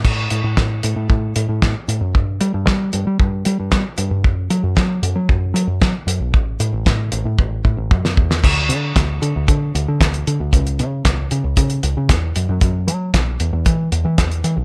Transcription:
<<
  \new Staff \with { instrumentName = "Picked electric bass" } { \clef bass \time 4/4 \key a \mixolydian \tempo 4 = 115 a,8 a,16 a,16 a,8 a,16 a,16 a,8 a,16 a,16 a,16 r16 a,16 fis,16 | g,8 g16 g,16 g8 g,16 g16 g,8 g16 g,16 g16 r16 g,16 g,16 | fis,8 fis16 fis,16 fis8 fis,16 fis16 fis,8 fis16 fis,16 fis16 r16 fis,16 b,,16 | a,,8 a,16 a,,16 a,8 a,,16 a,16 a,,8 a,16 a,,16 fis,8 e,8 |
d,8 d8 d,8 d16 d,16 d8 d,16 d16 d,8 d16 d,16 | cis,8 cis8 cis,8 cis16 cis,16 cis8 cis,16 cis16 e,8 fis,16 fis,16 | fis,8 fis8 b,,8 e,16 e,16 e8 e,16 e16 e,8 e16 b,,16 | }
  \new DrumStaff \with { instrumentName = "Drums" } \drummode { \time 4/4 <cymc bd>8 hh8 <bd sn>8 hh8 bd8 hh8 <bd sn>8 hh8 | bd8 hh8 <bd sn>8 hh8 bd8 hh8 <bd sn>8 hh8 | bd8 hh8 <bd sn>8 hh8 bd8 hh8 <bd sn>8 hh8 | bd8 hh8 <bd sn>8 hh8 bd8 bd8 bd16 sn16 bd16 sn16 |
<cymc bd>8 hh8 <hh bd sn>8 hh8 <hh bd>8 hh8 <hh bd sn>16 hh16 hh8 | <hh bd>16 hh16 hh8 <hh bd sn>8 hh8 <hh bd>16 hh16 hh8 <hh bd sn>8 hh8 | <hh bd>8 hh8 <hh bd sn>8 hh8 <hh bd>8 hh8 <hh bd sn>16 hh16 hh8 | }
>>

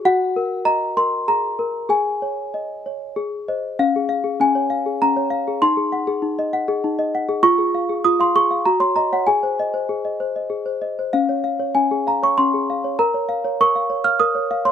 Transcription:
\new Staff \with { instrumentName = "Celesta" } { \time 3/4 \key des \major \tempo 4 = 98 << { ges''4 bes''8 c'''8 bes''4 | aes''2 r4 | f''4 aes''4 bes''4 | c'''2~ c'''8 r8 |
des'''4 ees'''16 c'''16 des'''8 bes''16 c'''16 bes''16 ges''16 | aes''2~ aes''8 r8 | f''4 aes''8 bes''16 des'''16 c'''4 | bes''4 des'''8. f'''16 ees'''8. c'''16 | } \\ { ges'8 bes'8 ees''8 bes'8 aes'8 bes'8 | aes'8 des''8 ees''8 des''8 aes'8 <c'' ees''>8 | des'16 aes'16 f''16 aes'16 des'16 des''16 f''16 aes'16 des'16 des''16 f''16 aes'16 | ees'16 aes'16 ges''16 aes'16 ees'16 ees''16 ges''16 aes'16 ees'16 ees''16 ges''16 aes'16 |
f'16 aes'16 f''16 aes'16 f'16 f''16 aes'16 f''16 ges'16 des''16 ees''16 des''16 | aes'16 c''16 ees''16 c''16 aes'16 ees''16 c''16 ees''16 aes'16 c''16 ees''16 c''16 | des'16 des''16 f''16 des''16 des'16 aes'16 f''16 des''16 des'16 aes'16 f''16 des''16 | bes'16 des''16 f''16 des''16 bes'16 f''16 des''16 f''16 bes'16 des''16 f''16 des''16 | } >> }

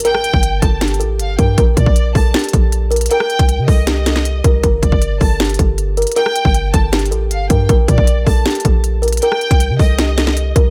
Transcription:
<<
  \new Staff \with { instrumentName = "Violin section" } { \time 4/4 \key g \minor \tempo 4 = 157 g''4. a''8 r4 f''8 g''8 | r8 d''4 a''8 r2 | g''4. ees''2~ ees''8 | r8 d''4 a''8 r2 |
g''4. a''8 r4 f''8 g''8 | r8 d''4 a''8 r2 | g''4. ees''2~ ees''8 | }
  \new Staff \with { instrumentName = "Kalimba" } { \time 4/4 \key g \minor bes'4. a'8 g'8 a'4 bes'8 | bes'4. a'8 g'8 a'4 bes'8 | bes'4. a'8 g'8 a'4 bes'8 | bes'4. a'8 g'8 a'4 bes'8 |
bes'4. a'8 g'8 a'4 bes'8 | bes'4. a'8 g'8 a'4 bes'8 | bes'4. a'8 g'8 a'4 bes'8 | }
  \new Staff \with { instrumentName = "808-style bass" } { \clef bass \time 4/4 \key g \minor r8. g,,8. g,,4 a,,8 g,,8 g,8 | bes,,8 bes,16 bes,,8. bes,,8 r8 bes,,4. | r8. c,8 c16 c,2 c,8 | g,,8 g,,16 g,,8. g,,4 g,,4~ g,,16 r16 |
r8. g,,8. g,,4 a,,8 g,,8 g,8 | bes,,8 bes,16 bes,,8. bes,,8 r8 bes,,4. | r8. c,8 c16 c,2 c,8 | }
  \new DrumStaff \with { instrumentName = "Drums" } \drummode { \time 4/4 hh16 ss16 hh16 bd16 hh8 <hh bd>8 \tuplet 3/2 { <hh sn>16 hh16 hh16 hh16 r16 r16 } hh8 <hh bd>8 | <hh bd>8 <hh bd>16 bd16 hh8 <hho bd>8 <hh sn>32 hh32 hh32 hh32 <hh bd>8 hh8 hh32 hh32 hh32 hh32 | hh16 ss16 hh16 <hh bd>16 hh8 <hho bd>8 <hh sn>8 <hh sn>16 sn16 hh8 <hh bd>8 | <hh bd>8 <hh bd>16 bd16 hh8 <hho bd>8 <hh sn>32 hh32 hh32 hh32 <hh bd>8 hh8 hh32 hh32 hh32 hh32 |
hh16 ss16 hh16 bd16 hh8 <hh bd>8 \tuplet 3/2 { <hh sn>16 hh16 hh16 hh16 r16 r16 } hh8 <hh bd>8 | <hh bd>8 <hh bd>16 bd16 hh8 <hho bd>8 <hh sn>32 hh32 hh32 hh32 <hh bd>8 hh8 hh32 hh32 hh32 hh32 | hh16 ss16 hh16 <hh bd>16 hh8 <hho bd>8 <hh sn>8 <hh sn>16 sn16 hh8 <hh bd>8 | }
>>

